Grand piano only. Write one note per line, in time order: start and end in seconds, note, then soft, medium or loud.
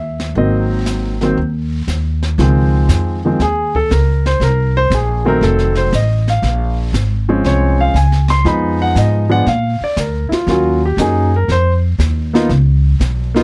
0.00 0.33 E5 medium
0.36 1.15 D#3 medium
0.36 1.15 F#3 medium
0.36 1.15 A#3 medium
0.36 1.15 C4 medium
0.36 0.84 D#5 medium
1.21 1.35 D#3 medium
1.21 1.36 F#3 medium
1.21 1.36 A#3 medium
1.21 1.37 C4 medium
2.39 3.17 D#3 medium
2.39 3.17 F3 medium
2.39 3.18 G#3 medium
2.39 3.18 C4 medium
3.25 3.38 D#3 medium
3.25 3.39 F3 medium
3.25 3.39 G#3 medium
3.25 3.40 C4 medium
3.42 3.75 G#4 medium
3.76 3.90 A4 medium
3.92 4.25 A#4 medium
4.26 4.41 C5 medium
4.43 4.76 A#4 medium
4.77 4.92 C5 loud
4.95 5.27 G#4 medium
5.25 5.89 D#3 medium
5.25 5.89 F#3 medium
5.25 5.89 A3 medium
5.25 5.89 C4 medium
5.25 5.42 A#4 medium
5.43 5.77 A4 medium
5.77 5.92 C5 medium
5.95 6.28 D#5 medium
6.30 6.76 F5 medium
7.29 7.92 F3 medium
7.29 7.92 G#3 medium
7.29 7.92 C4 medium
7.29 7.92 C#4 medium
7.46 7.79 C#5 medium
7.80 7.95 F5 medium
7.96 8.29 G#5 medium
8.30 8.45 C6 medium
8.45 9.24 F3 medium
8.45 9.24 G#3 medium
8.45 9.24 B3 medium
8.45 9.24 D#4 medium
8.45 8.80 B5 medium
8.82 8.96 F#5 medium
8.98 9.31 D#5 medium
9.29 9.44 F3 medium
9.29 9.44 G#3 medium
9.29 9.45 B3 medium
9.29 9.45 D4 medium
9.29 9.46 F#5 loud
9.48 9.81 F5 medium
9.84 9.98 D5 medium
9.99 10.32 A#4 medium
10.29 10.31 E4 medium
10.33 10.48 F4 medium
10.48 10.79 F#3 medium
10.48 10.79 A#3 medium
10.48 10.80 C#4 medium
10.48 10.80 F4 medium
10.48 10.83 F#4 medium
10.85 10.99 G4 medium
10.98 11.29 F#3 medium
10.98 11.30 A#3 medium
10.98 11.30 C#4 medium
10.98 11.30 D#4 medium
10.98 11.34 G#4 medium
11.36 11.50 A#4 medium
11.52 11.72 C5 medium
12.33 12.48 A#3 medium
12.33 12.48 B3 medium
12.33 12.49 D#4 medium
12.33 12.49 F4 medium
13.34 13.43 A#3 medium
13.34 13.43 B3 medium
13.34 13.43 D#4 medium
13.34 13.43 F4 medium